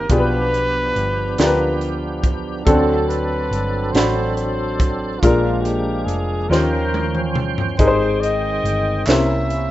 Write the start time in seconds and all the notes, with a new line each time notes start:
Already playing: C4 D#4 G4 A#4 C5
0.09 B1 B2 F3 B3 D4 F4 G4 G#4 B4, kick, closed hi-hat
0.19 B4
0.54 closed hi-hat
0.95 G1, closed hi-hat
1.38 D2 D4 F4 G4 A#4, snare, closed hi-hat
1.46 B4
1.81 closed hi-hat
2.24 kick, closed hi-hat
2.65 D2 D3 F#3 C4 D4 F#4 A4, kick, closed hi-hat
3.08 B4, closed hi-hat
3.51 G1, closed hi-hat
3.92 A1 D4 F#4 A4 C5 B5, snare, closed hi-hat
4.35 C5, closed hi-hat
4.80 kick, closed hi-hat
5.20 A#1 A#2 F3 G#3 A#3 D4 F4, kick, closed hi-hat
5.24 G#3 A#4
5.62 G4, closed hi-hat
6.05 F1 G#4, closed hi-hat
6.49 D#2 D#3 C#4 F4 G4 A#4 C5 G5, snare
6.94 high tom
7.15 mid tom
7.35 mid tom
7.58 floor tom
7.78 G#1 D#3 G#3 C4 D#4 G4 G#4 A#4 C5, kick, closed hi-hat
7.88 C5
8.20 D#5, closed hi-hat
8.63 G1, closed hi-hat
9.07 C2 C3 A#3 C#4 E4 A#4 C5 E5, snare, clap, closed hi-hat
9.50 closed hi-hat